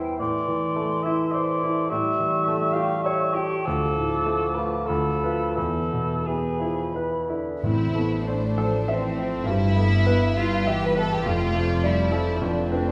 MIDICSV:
0, 0, Header, 1, 11, 480
1, 0, Start_track
1, 0, Key_signature, 0, "minor"
1, 0, Tempo, 568182
1, 163, Time_signature, 3, 2, 24, 8
1, 2077, Tempo, 597610
1, 3517, Tempo, 634249
1, 3997, Tempo, 688073
1, 5917, Tempo, 641026
1, 6397, Tempo, 600601
1, 7837, Tempo, 585366
1, 10163, End_track
2, 0, Start_track
2, 0, Title_t, "Flute"
2, 0, Program_c, 0, 73
2, 0, Note_on_c, 0, 79, 45
2, 126, Note_off_c, 0, 79, 0
2, 162, Note_on_c, 0, 84, 48
2, 1567, Note_off_c, 0, 84, 0
2, 1597, Note_on_c, 0, 85, 49
2, 3006, Note_off_c, 0, 85, 0
2, 3036, Note_on_c, 0, 86, 48
2, 3998, Note_on_c, 0, 83, 39
2, 4008, Note_off_c, 0, 86, 0
2, 4463, Note_off_c, 0, 83, 0
2, 4467, Note_on_c, 0, 83, 36
2, 4952, Note_off_c, 0, 83, 0
2, 4965, Note_on_c, 0, 83, 41
2, 5664, Note_off_c, 0, 83, 0
2, 10163, End_track
3, 0, Start_track
3, 0, Title_t, "Cor anglais"
3, 0, Program_c, 1, 69
3, 166, Note_on_c, 1, 74, 71
3, 873, Note_on_c, 1, 76, 58
3, 886, Note_off_c, 1, 74, 0
3, 1116, Note_on_c, 1, 74, 70
3, 1129, Note_off_c, 1, 76, 0
3, 1599, Note_off_c, 1, 74, 0
3, 1604, Note_on_c, 1, 76, 71
3, 2297, Note_on_c, 1, 77, 64
3, 2309, Note_off_c, 1, 76, 0
3, 2539, Note_off_c, 1, 77, 0
3, 2543, Note_on_c, 1, 76, 62
3, 2787, Note_on_c, 1, 67, 58
3, 2799, Note_off_c, 1, 76, 0
3, 3039, Note_on_c, 1, 69, 63
3, 3051, Note_off_c, 1, 67, 0
3, 3740, Note_on_c, 1, 71, 57
3, 3752, Note_off_c, 1, 69, 0
3, 3982, Note_on_c, 1, 69, 57
3, 3993, Note_off_c, 1, 71, 0
3, 4460, Note_off_c, 1, 69, 0
3, 4464, Note_on_c, 1, 69, 54
3, 4955, Note_on_c, 1, 68, 42
3, 4966, Note_off_c, 1, 69, 0
3, 5433, Note_off_c, 1, 68, 0
3, 10163, End_track
4, 0, Start_track
4, 0, Title_t, "Violin section"
4, 0, Program_c, 2, 48
4, 5907, Note_on_c, 2, 72, 48
4, 7314, Note_off_c, 2, 72, 0
4, 7342, Note_on_c, 2, 71, 55
4, 8799, Note_off_c, 2, 71, 0
4, 8810, Note_on_c, 2, 74, 51
4, 9728, Note_off_c, 2, 74, 0
4, 9755, Note_on_c, 2, 71, 40
4, 10163, Note_off_c, 2, 71, 0
4, 10163, End_track
5, 0, Start_track
5, 0, Title_t, "Grand piano"
5, 0, Program_c, 3, 0
5, 0, Control_c, 3, 64, 127
5, 0, Note_on_c, 3, 40, 42
5, 0, Note_on_c, 3, 52, 37
5, 0, Note_on_c, 3, 55, 41
5, 0, Note_on_c, 3, 64, 41
5, 0, Note_on_c, 3, 72, 41
5, 125, Note_off_c, 3, 40, 0
5, 162, Note_off_c, 3, 64, 0
5, 164, Note_on_c, 3, 45, 49
5, 179, Control_c, 3, 64, 0
5, 185, Note_off_c, 3, 55, 0
5, 186, Note_off_c, 3, 52, 0
5, 186, Note_off_c, 3, 72, 0
5, 293, Control_c, 3, 64, 127
5, 404, Note_on_c, 3, 52, 41
5, 641, Note_on_c, 3, 57, 42
5, 787, Note_off_c, 3, 52, 0
5, 891, Note_on_c, 3, 64, 47
5, 1025, Note_off_c, 3, 57, 0
5, 1140, Note_on_c, 3, 72, 40
5, 1270, Note_off_c, 3, 64, 0
5, 1379, Note_on_c, 3, 64, 44
5, 1514, Note_off_c, 3, 72, 0
5, 1568, Note_off_c, 3, 45, 0
5, 1610, Note_off_c, 3, 64, 0
5, 1617, Control_c, 3, 64, 0
5, 1617, Note_on_c, 3, 45, 54
5, 1765, Control_c, 3, 64, 127
5, 1852, Note_on_c, 3, 52, 40
5, 2092, Note_on_c, 3, 57, 49
5, 2220, Note_off_c, 3, 52, 0
5, 2318, Note_on_c, 3, 67, 46
5, 2455, Note_off_c, 3, 57, 0
5, 2559, Note_on_c, 3, 73, 43
5, 2697, Note_off_c, 3, 67, 0
5, 2794, Note_on_c, 3, 67, 45
5, 2947, Note_off_c, 3, 73, 0
5, 3012, Note_off_c, 3, 45, 0
5, 3039, Note_off_c, 3, 67, 0
5, 3051, Note_on_c, 3, 38, 45
5, 3052, Control_c, 3, 64, 0
5, 3176, Control_c, 3, 64, 127
5, 3291, Note_on_c, 3, 45, 37
5, 3525, Note_on_c, 3, 57, 41
5, 3663, Note_off_c, 3, 45, 0
5, 3763, Note_on_c, 3, 65, 39
5, 3902, Note_off_c, 3, 57, 0
5, 3975, Note_off_c, 3, 38, 0
5, 4002, Note_off_c, 3, 65, 0
5, 4003, Note_on_c, 3, 38, 44
5, 4010, Control_c, 3, 64, 0
5, 4126, Control_c, 3, 64, 127
5, 4240, Note_on_c, 3, 65, 36
5, 4242, Note_on_c, 3, 71, 36
5, 4454, Note_off_c, 3, 65, 0
5, 4455, Note_off_c, 3, 71, 0
5, 4462, Note_off_c, 3, 38, 0
5, 4477, Note_on_c, 3, 40, 42
5, 4488, Control_c, 3, 64, 0
5, 4633, Control_c, 3, 64, 127
5, 4722, Note_on_c, 3, 47, 33
5, 4978, Note_on_c, 3, 59, 33
5, 5109, Note_off_c, 3, 47, 0
5, 5203, Note_on_c, 3, 64, 35
5, 5351, Note_off_c, 3, 59, 0
5, 5443, Note_on_c, 3, 71, 35
5, 5581, Note_off_c, 3, 64, 0
5, 5675, Note_on_c, 3, 64, 34
5, 5825, Note_off_c, 3, 71, 0
5, 5889, Note_off_c, 3, 40, 0
5, 5913, Note_off_c, 3, 64, 0
5, 5918, Note_on_c, 3, 45, 44
5, 5929, Control_c, 3, 64, 0
5, 6042, Control_c, 3, 64, 127
5, 6150, Note_on_c, 3, 57, 37
5, 6391, Note_on_c, 3, 72, 40
5, 6539, Note_off_c, 3, 57, 0
5, 6635, Note_on_c, 3, 69, 45
5, 6782, Note_off_c, 3, 72, 0
5, 6878, Note_on_c, 3, 76, 43
5, 7019, Note_off_c, 3, 69, 0
5, 7110, Note_on_c, 3, 72, 37
5, 7255, Note_off_c, 3, 76, 0
5, 7320, Note_off_c, 3, 45, 0
5, 7336, Note_on_c, 3, 43, 51
5, 7348, Note_off_c, 3, 72, 0
5, 7366, Control_c, 3, 64, 0
5, 7471, Control_c, 3, 64, 127
5, 7582, Note_on_c, 3, 59, 41
5, 7824, Note_on_c, 3, 71, 50
5, 7978, Note_off_c, 3, 59, 0
5, 8077, Note_on_c, 3, 64, 45
5, 8217, Note_off_c, 3, 71, 0
5, 8318, Note_on_c, 3, 76, 49
5, 8462, Note_off_c, 3, 64, 0
5, 8555, Note_on_c, 3, 71, 47
5, 8706, Note_off_c, 3, 76, 0
5, 8763, Note_off_c, 3, 43, 0
5, 8801, Note_off_c, 3, 71, 0
5, 8801, Note_on_c, 3, 41, 53
5, 8818, Control_c, 3, 64, 0
5, 8964, Control_c, 3, 64, 127
5, 9036, Note_on_c, 3, 57, 39
5, 9272, Note_on_c, 3, 74, 44
5, 9407, Note_off_c, 3, 57, 0
5, 9508, Note_on_c, 3, 69, 43
5, 9648, Note_off_c, 3, 74, 0
5, 9714, Note_off_c, 3, 41, 0
5, 9746, Note_off_c, 3, 69, 0
5, 9752, Note_on_c, 3, 41, 50
5, 9760, Control_c, 3, 64, 0
5, 9914, Control_c, 3, 64, 127
5, 9997, Note_on_c, 3, 62, 33
5, 9998, Note_on_c, 3, 71, 36
5, 10163, Note_off_c, 3, 41, 0
5, 10163, Note_off_c, 3, 62, 0
5, 10163, Note_off_c, 3, 71, 0
5, 10163, End_track
6, 0, Start_track
6, 0, Title_t, "Violin section"
6, 0, Program_c, 4, 48
6, 5914, Note_on_c, 4, 64, 60
6, 6365, Note_off_c, 4, 64, 0
6, 6403, Note_on_c, 4, 62, 52
6, 6883, Note_on_c, 4, 60, 60
6, 6884, Note_off_c, 4, 62, 0
6, 7347, Note_on_c, 4, 64, 76
6, 7352, Note_off_c, 4, 60, 0
6, 8077, Note_off_c, 4, 64, 0
6, 8080, Note_on_c, 4, 65, 70
6, 8319, Note_off_c, 4, 65, 0
6, 8320, Note_on_c, 4, 67, 65
6, 8440, Note_off_c, 4, 67, 0
6, 8452, Note_on_c, 4, 71, 67
6, 8567, Note_off_c, 4, 71, 0
6, 8579, Note_on_c, 4, 69, 65
6, 8689, Note_off_c, 4, 69, 0
6, 8704, Note_on_c, 4, 67, 66
6, 8811, Note_on_c, 4, 65, 69
6, 8814, Note_off_c, 4, 67, 0
6, 9273, Note_off_c, 4, 65, 0
6, 9288, Note_on_c, 4, 64, 59
6, 9752, Note_on_c, 4, 62, 52
6, 9753, Note_off_c, 4, 64, 0
6, 9983, Note_on_c, 4, 60, 47
6, 9991, Note_off_c, 4, 62, 0
6, 10107, Note_off_c, 4, 60, 0
6, 10121, Note_on_c, 4, 62, 51
6, 10163, Note_off_c, 4, 62, 0
6, 10163, End_track
7, 0, Start_track
7, 0, Title_t, "Viola section"
7, 0, Program_c, 5, 48
7, 5913, Note_on_c, 5, 60, 41
7, 6140, Note_off_c, 5, 60, 0
7, 6149, Note_on_c, 5, 59, 38
7, 6390, Note_on_c, 5, 57, 43
7, 6391, Note_off_c, 5, 59, 0
7, 6633, Note_on_c, 5, 53, 38
7, 6638, Note_off_c, 5, 57, 0
7, 6876, Note_off_c, 5, 53, 0
7, 6880, Note_on_c, 5, 52, 38
7, 7115, Note_off_c, 5, 52, 0
7, 7115, Note_on_c, 5, 53, 42
7, 7346, Note_on_c, 5, 55, 47
7, 7350, Note_off_c, 5, 53, 0
7, 7588, Note_on_c, 5, 57, 44
7, 7589, Note_off_c, 5, 55, 0
7, 7833, Note_off_c, 5, 57, 0
7, 7842, Note_on_c, 5, 59, 51
7, 8083, Note_off_c, 5, 59, 0
7, 8083, Note_on_c, 5, 55, 46
7, 8315, Note_off_c, 5, 55, 0
7, 8321, Note_on_c, 5, 52, 53
7, 8796, Note_on_c, 5, 57, 51
7, 8805, Note_off_c, 5, 52, 0
7, 9031, Note_off_c, 5, 57, 0
7, 9039, Note_on_c, 5, 53, 41
7, 9265, Note_off_c, 5, 53, 0
7, 9271, Note_on_c, 5, 55, 46
7, 9499, Note_on_c, 5, 53, 46
7, 9504, Note_off_c, 5, 55, 0
7, 9734, Note_on_c, 5, 57, 48
7, 9742, Note_off_c, 5, 53, 0
7, 10163, Note_off_c, 5, 57, 0
7, 10163, End_track
8, 0, Start_track
8, 0, Title_t, "Bassoon"
8, 0, Program_c, 6, 70
8, 0, Note_on_c, 6, 52, 48
8, 159, Note_off_c, 6, 52, 0
8, 164, Note_on_c, 6, 52, 44
8, 1601, Note_on_c, 6, 55, 45
8, 1614, Note_off_c, 6, 52, 0
8, 2906, Note_off_c, 6, 55, 0
8, 3043, Note_on_c, 6, 53, 48
8, 3968, Note_off_c, 6, 53, 0
8, 3995, Note_on_c, 6, 53, 41
8, 4470, Note_on_c, 6, 52, 34
8, 4480, Note_off_c, 6, 53, 0
8, 4956, Note_off_c, 6, 52, 0
8, 4960, Note_on_c, 6, 52, 42
8, 5193, Note_on_c, 6, 53, 44
8, 5203, Note_off_c, 6, 52, 0
8, 5428, Note_off_c, 6, 53, 0
8, 5432, Note_on_c, 6, 52, 42
8, 5676, Note_on_c, 6, 50, 34
8, 5687, Note_off_c, 6, 52, 0
8, 5914, Note_off_c, 6, 50, 0
8, 10163, End_track
9, 0, Start_track
9, 0, Title_t, "Timpani"
9, 0, Program_c, 7, 47
9, 5914, Note_on_c, 7, 45, 53
9, 6608, Note_off_c, 7, 45, 0
9, 10163, End_track
10, 0, Start_track
10, 0, Title_t, "Cello section"
10, 0, Program_c, 8, 48
10, 5916, Note_on_c, 8, 45, 47
10, 7319, Note_off_c, 8, 45, 0
10, 7348, Note_on_c, 8, 43, 50
10, 8773, Note_off_c, 8, 43, 0
10, 8804, Note_on_c, 8, 41, 49
10, 10163, Note_off_c, 8, 41, 0
10, 10163, End_track
11, 0, Start_track
11, 0, Title_t, "Double bass section"
11, 0, Program_c, 10, 48
11, 5913, Note_on_c, 10, 33, 43
11, 7317, Note_off_c, 10, 33, 0
11, 7346, Note_on_c, 10, 31, 49
11, 8772, Note_off_c, 10, 31, 0
11, 8802, Note_on_c, 10, 29, 53
11, 10163, Note_off_c, 10, 29, 0
11, 10163, End_track
0, 0, End_of_file